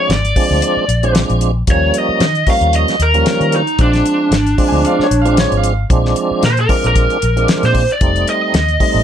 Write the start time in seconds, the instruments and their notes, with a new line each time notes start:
Already playing: tonewheel organ F3 G#3 C4 D4, lead electric guitar C#5
0.09 fingered electric bass G#1, lead electric guitar D5, snare, closed hi-hat
0.25 closed hi-hat
0.36 tonewheel organ F3 G#3 C4 D4, kick, open hi-hat
0.51 fingered electric bass D2
0.62 closed hi-hat
0.77 muted fingered electric bass stroke
0.88 fingered electric bass A#1, closed hi-hat
1.03 tonewheel organ F3 G#3 C4 D4, closed hi-hat
1.15 snare, closed hi-hat
1.30 fingered electric bass A#1, closed hi-hat
1.41 closed hi-hat
1.67 fingered electric bass D#2, tonewheel organ F3 G3 A#3 C#4, kick, closed hi-hat
1.71 lead electric guitar C#5
1.94 closed hi-hat
1.98 lead electric guitar D#5
2.09 muted fingered electric bass stroke
2.20 fingered electric bass D#3, snare, closed hi-hat
2.35 closed hi-hat
2.47 tonewheel organ F3 G3 A#3 C#4, lead electric guitar F5, muted fingered electric bass stroke, kick, open hi-hat
2.61 fingered electric bass D#2, closed hi-hat
2.73 lead electric guitar D#5, closed hi-hat
2.88 snare, closed hi-hat
2.99 fingered electric bass D#2, lead electric guitar A#4, closed hi-hat
3.14 tonewheel organ F3 G3 A#3 C#4, closed hi-hat
3.26 snare, closed hi-hat
3.41 fingered electric bass D#3, closed hi-hat
3.52 lead electric guitar D#4, closed hi-hat
3.67 closed hi-hat
3.79 fingered electric bass A#1, tonewheel organ F3 G#3 C4 D4, lead electric guitar D4, kick, closed hi-hat
3.93 snare, closed hi-hat
4.06 closed hi-hat
4.31 fingered electric bass G#1, snare, closed hi-hat
4.47 closed hi-hat
4.58 tonewheel organ F3 G#3 C4 D4, kick, open hi-hat
4.68 upright piano G#5
4.72 fingered electric bass D2
4.85 upright piano F5, closed hi-hat
4.99 muted fingered electric bass stroke, snare
5.03 upright piano C#5
5.11 fingered electric bass A#1, closed hi-hat
5.22 tonewheel organ F3 G#3 C4 D4, upright piano F5, closed hi-hat
5.37 upright piano C#5, snare, closed hi-hat
5.52 fingered electric bass G#1, closed hi-hat
5.57 upright piano F5
5.64 closed hi-hat
5.90 fingered electric bass A#1, tonewheel organ F3 G#3 C4 D4, kick, closed hi-hat
6.06 snare
6.16 closed hi-hat
6.31 muted fingered electric bass stroke
6.43 fingered electric bass A#2, lead electric guitar C5, snare, closed hi-hat
6.57 lead electric guitar A#4, closed hi-hat
6.69 tonewheel organ F3 G#3 C4 D4, kick, open hi-hat
6.84 fingered electric bass A#1, lead electric guitar A#4, closed hi-hat
6.96 kick, closed hi-hat
7.10 closed hi-hat
7.22 fingered electric bass A#1, closed hi-hat
7.36 tonewheel organ F3 G#3 C4 D4, closed hi-hat
7.48 snare, closed hi-hat
7.63 fingered electric bass A#2, lead electric guitar C5, snare, closed hi-hat
7.75 kick, open hi-hat
7.89 lead electric guitar D5, closed hi-hat
8.01 fingered electric bass F1, tonewheel organ G3 A3 C4 D#4, kick, closed hi-hat
8.16 closed hi-hat
8.28 lead electric guitar D#5, closed hi-hat
8.54 fingered electric bass D#2, snare, closed hi-hat
8.68 closed hi-hat
8.80 tonewheel organ G3 A3 C4 D#4, kick, open hi-hat
8.94 fingered electric bass A1